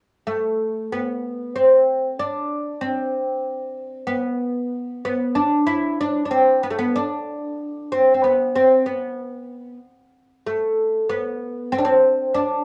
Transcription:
0.27 0.92 A3 medium
0.92 1.55 B3 medium
1.56 2.20 C4 medium
2.19 2.84 D4 medium
2.81 4.06 C4 medium
4.07 5.04 B3 medium
5.05 5.37 B3 medium
5.35 5.66 D4 medium
5.67 6.00 E4 medium
6.01 6.24 D4 medium
6.25 6.30 D4 medium
6.31 6.60 C4 medium
6.63 6.70 B3 medium
6.70 6.77 A3 medium
6.79 6.96 B3 medium
6.96 7.92 D4 medium
7.92 8.13 C4 medium
8.14 8.21 C4 medium
8.24 8.55 B3 medium
8.55 8.84 C4 medium
8.86 9.77 B3 medium
10.46 11.09 A3 medium
11.09 11.73 B3 medium
11.72 11.78 C4 medium
11.78 11.85 D4 medium
11.85 12.35 C4 medium
12.34 12.64 D4 medium

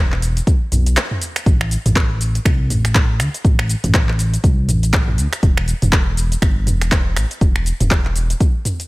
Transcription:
0.00 0.41 E1 medium
0.12 clap soft
0.22 open hi-hat medium
0.22 shaker medium
0.37 closed hi-hat medium
0.37 shaker medium
0.47 kick loud
0.47 closed hi-hat soft
0.47 shaker soft
0.72 0.97 B1 medium
0.72 mid tom medium
0.72 open hi-hat loud
0.72 shaker medium
0.86 closed hi-hat medium
0.86 shaker soft
0.97 finger snap medium
0.97 clap loud
0.97 closed hi-hat soft
0.97 shaker soft
1.11 mid tom medium
1.21 open hi-hat loud
1.21 shaker medium
1.36 finger snap medium
1.36 closed hi-hat medium
1.36 shaker soft
1.46 1.77 A1 loud
1.46 kick loud
1.46 closed hi-hat soft
1.46 shaker soft
1.61 finger snap medium
1.71 open hi-hat medium
1.71 shaker medium
1.85 2.39 A1 medium
1.85 closed hi-hat medium
1.85 mid tom medium
1.85 shaker medium
1.96 kick loud
1.96 clap medium
1.96 closed hi-hat soft
1.96 shaker soft
2.21 open hi-hat loud
2.21 shaker medium
2.35 closed hi-hat medium
2.35 shaker medium
2.45 2.72 C2 loud
2.45 finger snap loud
2.45 kick loud
2.45 closed hi-hat soft
2.45 shaker soft
2.70 3.21 A1 loud
2.70 mid tom medium
2.70 open hi-hat loud
2.70 shaker medium
2.85 finger snap medium
2.85 closed hi-hat medium
2.85 shaker medium
2.95 kick loud
2.95 clap loud
2.95 closed hi-hat soft
2.95 shaker soft
3.20 3.29 D2 loud
3.20 finger snap loud
3.20 open hi-hat loud
3.20 shaker medium
3.34 closed hi-hat medium
3.34 shaker medium
3.45 3.75 A1 loud
3.45 kick loud
3.45 closed hi-hat soft
3.45 shaker soft
3.59 finger snap loud
3.69 open hi-hat loud
3.69 shaker loud
3.84 4.38 A1 medium
3.84 closed hi-hat medium
3.84 mid tom loud
3.84 shaker medium
3.94 kick loud
3.94 clap medium
3.94 closed hi-hat soft
3.94 shaker soft
4.09 clap soft
4.19 open hi-hat medium
4.19 shaker loud
4.34 closed hi-hat medium
4.34 shaker medium
4.44 4.70 C2 loud
4.44 kick loud
4.44 closed hi-hat soft
4.44 shaker soft
4.69 5.20 A1 loud
4.69 mid tom medium
4.69 open hi-hat loud
4.69 shaker medium
4.83 closed hi-hat medium
4.83 shaker medium
4.93 finger snap medium
4.93 kick loud
4.93 clap loud
4.93 closed hi-hat soft
4.93 shaker soft
5.08 mid tom medium
5.18 5.27 D2 loud
5.18 open hi-hat medium
5.18 shaker loud
5.33 finger snap medium
5.33 closed hi-hat medium
5.33 shaker medium
5.43 5.74 E1 loud
5.43 kick loud
5.43 closed hi-hat soft
5.43 shaker soft
5.57 finger snap medium
5.68 open hi-hat medium
5.68 shaker loud
5.82 6.36 E1 medium
5.82 closed hi-hat medium
5.82 mid tom loud
5.82 shaker medium
5.92 kick loud
5.92 clap loud
5.92 closed hi-hat soft
5.92 shaker soft
6.17 open hi-hat medium
6.17 shaker medium
6.32 closed hi-hat medium
6.32 shaker medium
6.42 6.68 G1 loud
6.42 finger snap loud
6.42 kick loud
6.42 closed hi-hat soft
6.42 shaker soft
6.67 7.18 E1 loud
6.67 mid tom medium
6.67 open hi-hat medium
6.67 shaker loud
6.81 finger snap medium
6.81 closed hi-hat medium
6.81 shaker medium
6.92 kick loud
6.92 clap loud
6.92 closed hi-hat soft
6.92 shaker soft
7.16 7.26 A1 loud
7.16 finger snap loud
7.16 open hi-hat medium
7.16 shaker loud
7.31 closed hi-hat medium
7.31 shaker medium
7.41 7.72 E1 loud
7.41 kick loud
7.41 closed hi-hat soft
7.41 shaker soft
7.56 finger snap medium
7.66 open hi-hat medium
7.66 shaker loud
7.80 8.34 E1 medium
7.80 closed hi-hat medium
7.80 mid tom loud
7.80 shaker medium
7.91 kick loud
7.91 clap loud
7.91 closed hi-hat soft
7.91 shaker soft
8.05 clap soft
8.16 open hi-hat medium
8.16 shaker loud
8.30 closed hi-hat medium
8.30 shaker medium
8.40 kick loud
8.40 closed hi-hat soft
8.40 shaker soft
8.65 mid tom medium
8.65 open hi-hat medium
8.65 shaker loud
8.80 closed hi-hat medium
8.80 shaker medium

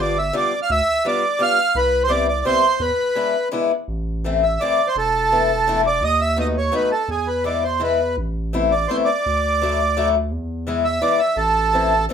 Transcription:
0.00 0.32 G1 medium
0.00 0.16 G3 soft
0.00 0.16 B3 soft
0.00 0.17 D4 medium
0.00 0.16 F4 medium
0.00 0.18 D5 medium
0.18 0.35 E5 medium
0.33 0.51 G3 medium
0.33 0.52 B3 medium
0.33 0.52 D4 soft
0.33 0.52 F4 medium
0.33 0.60 D5 medium
0.62 0.70 F5 medium
0.70 0.81 D2 loud
0.70 1.07 E5 loud
1.05 1.23 G3 medium
1.05 1.23 B3 soft
1.05 1.23 D4 soft
1.05 1.23 F4 medium
1.05 1.42 D5 medium
1.39 1.57 G3 medium
1.39 1.58 B3 medium
1.39 1.58 D4 medium
1.39 1.58 F4 medium
1.39 1.77 F5 loud
1.75 2.43 C2 loud
1.75 2.03 B4 medium
2.04 2.11 C5 medium
2.08 2.27 G3 medium
2.08 2.27 B3 medium
2.08 2.27 C4 medium
2.08 2.27 E4 soft
2.08 2.27 D5 medium
2.28 2.44 D5 medium
2.45 2.63 G3 medium
2.45 2.63 B3 soft
2.45 2.63 C4 medium
2.45 2.64 E4 medium
2.45 2.82 C5 loud
2.80 2.91 E2 loud
2.80 3.49 B4 medium
3.15 3.34 G#3 soft
3.15 3.34 B3 soft
3.15 3.34 D4 soft
3.15 3.35 E4 medium
3.52 3.70 G#3 medium
3.52 3.71 B3 medium
3.52 3.71 D4 medium
3.52 3.71 E4 medium
3.88 4.58 A1 loud
4.24 4.43 E3 soft
4.24 4.43 A3 medium
4.24 4.43 C4 medium
4.24 4.44 E4 medium
4.43 4.61 E5 medium
4.61 4.79 E3 medium
4.61 4.79 A3 soft
4.61 4.79 C4 medium
4.61 4.79 E4 medium
4.61 4.88 D5 medium
4.87 4.96 C5 medium
4.96 6.02 E1 medium
4.96 5.81 A4 medium
5.32 5.49 E3 medium
5.32 5.49 A3 soft
5.32 5.50 B3 soft
5.32 5.50 E4 soft
5.67 5.85 E3 medium
5.67 5.85 A3 medium
5.67 5.85 B3 medium
5.67 5.85 E4 medium
5.87 6.03 D5 medium
6.00 6.70 D#2 loud
6.00 6.21 D#5 loud
6.21 6.38 E5 medium
6.36 6.55 F#3 medium
6.36 6.55 A3 soft
6.36 6.55 B3 soft
6.36 6.55 D#4 medium
6.36 6.47 D#5 medium
6.58 6.75 C#5 medium
6.72 6.90 F#3 medium
6.72 6.91 A3 medium
6.72 6.91 B3 medium
6.72 6.91 D#4 medium
6.72 6.91 B4 medium
6.92 7.10 A4 medium
7.08 8.18 E2 medium
7.08 7.29 G#4 medium
7.28 7.44 B4 medium
7.44 7.63 E3 medium
7.44 7.63 G#3 soft
7.44 7.63 B3 soft
7.44 7.64 E4 soft
7.44 7.64 D5 medium
7.64 7.82 C5 medium
7.80 7.99 E3 medium
7.80 7.99 G#3 soft
7.80 7.99 B3 soft
7.80 7.99 E4 medium
7.80 8.16 B4 medium
8.17 8.87 A1 loud
8.53 8.71 A3 medium
8.53 8.72 B3 medium
8.53 8.72 C4 medium
8.53 8.72 E4 medium
8.71 8.90 D5 medium
8.88 9.08 A3 medium
8.88 9.08 B3 soft
8.88 9.08 C4 soft
8.88 9.08 E4 medium
8.88 8.97 C5 medium
9.05 10.09 D5 medium
9.26 10.32 D2 medium
9.62 9.79 F#3 medium
9.62 9.79 A3 soft
9.62 9.80 D4 soft
9.62 9.80 E4 medium
9.97 10.14 F#3 medium
9.97 10.14 A3 medium
9.97 10.15 D4 medium
9.97 10.15 E4 medium
10.31 11.00 E2 loud
10.67 10.84 E3 medium
10.67 10.85 G#3 medium
10.67 10.85 B3 soft
10.67 10.85 E4 medium
10.85 11.02 E5 medium
11.01 11.19 E3 medium
11.01 11.19 G#3 soft
11.01 11.20 B3 medium
11.01 11.20 E4 medium
11.01 11.20 D5 medium
11.20 11.38 E5 medium
11.37 12.08 A1 loud
11.37 12.05 A4 medium
11.73 11.91 E3 soft
11.73 11.91 A3 soft
11.73 11.92 C4 soft
11.73 11.92 E4 medium
12.09 12.13 E3 medium
12.09 12.13 A3 medium
12.09 12.13 C4 medium

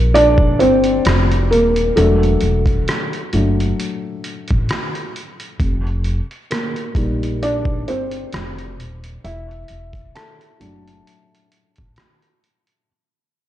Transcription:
0.00 0.61 A#1 medium
0.00 1.98 G3 medium
0.00 1.53 A#3 medium
0.00 1.98 D#4 medium
0.00 0.10 A#4 medium
0.15 0.58 D4 medium
0.15 0.61 D5 loud
0.15 closed hi-hat medium
0.38 kick medium
0.60 0.98 G1 loud
0.60 1.48 C4 medium
0.60 1.53 C5 medium
0.60 closed hi-hat medium
0.84 closed hi-hat soft
1.05 1.52 F1 medium
1.05 cross-stick loud
1.05 closed hi-hat medium
1.32 closed hi-hat soft
1.51 1.89 D#1 medium
1.51 1.94 A#3 medium
1.51 1.98 A#4 medium
1.51 closed hi-hat medium
1.76 closed hi-hat soft
1.96 2.34 E1 loud
1.96 3.29 F#3 medium
1.96 2.84 A3 medium
1.96 3.30 D4 medium
1.96 2.83 A4 medium
1.96 closed hi-hat medium
2.23 closed hi-hat soft
2.40 2.79 E1 medium
2.40 closed hi-hat medium
2.66 kick medium
2.66 closed hi-hat soft
2.88 cross-stick loud
2.88 closed hi-hat medium
3.13 closed hi-hat soft
3.33 3.70 F#1 medium
3.33 3.74 F#3 soft
3.33 3.74 A3 soft
3.33 3.75 D4 soft
3.33 closed hi-hat medium
3.60 closed hi-hat soft
3.80 closed hi-hat medium
4.24 closed hi-hat medium
4.48 4.67 A1 medium
4.48 kick medium
4.48 closed hi-hat soft
4.69 cross-stick loud
4.69 closed hi-hat medium
4.95 closed hi-hat soft
5.16 closed hi-hat medium
5.40 closed hi-hat soft
5.60 6.19 F1 loud
5.60 kick loud
5.60 closed hi-hat medium
5.87 closed hi-hat soft
6.04 closed hi-hat medium
6.31 closed hi-hat soft
6.51 6.96 A#3 medium
6.51 7.44 A#4 medium
6.51 cross-stick loud
6.51 closed hi-hat medium
6.76 closed hi-hat soft
6.95 7.88 A#1 medium
6.95 8.29 G3 soft
6.95 8.29 A#3 soft
6.95 8.29 D#4 medium
6.95 kick medium
6.95 closed hi-hat medium
7.23 closed hi-hat soft
7.43 7.85 D4 medium
7.43 7.89 D5 medium
7.43 closed hi-hat medium
7.65 kick loud
7.88 8.25 G1 medium
7.88 9.21 C4 medium
7.88 9.28 C5 medium
7.88 closed hi-hat medium
8.12 closed hi-hat soft
8.33 8.79 F1 medium
8.33 cross-stick loud
8.33 closed hi-hat medium
8.59 closed hi-hat soft
8.79 9.16 D#1 medium
8.79 closed hi-hat medium
9.04 closed hi-hat soft
9.24 9.61 E1 loud
9.24 10.11 E4 medium
9.24 10.17 E5 loud
9.24 closed hi-hat medium
9.51 closed hi-hat soft
9.68 10.07 E1 medium
9.68 closed hi-hat medium
9.93 kick medium
9.93 closed hi-hat soft
10.15 12.38 A4 medium
10.15 12.38 A5 medium
10.15 cross-stick loud
10.15 closed hi-hat medium
10.41 closed hi-hat soft
10.60 10.98 F#1 medium
10.60 12.83 F#3 soft
10.60 12.84 A3 soft
10.60 12.84 D4 medium
10.60 closed hi-hat medium
10.88 closed hi-hat soft
11.07 closed hi-hat medium
11.35 closed hi-hat soft
11.52 closed hi-hat medium
11.76 11.94 A1 medium
11.76 kick medium
11.76 closed hi-hat soft
11.96 cross-stick medium
11.96 closed hi-hat medium
12.22 closed hi-hat soft
12.44 closed hi-hat medium
12.67 closed hi-hat soft

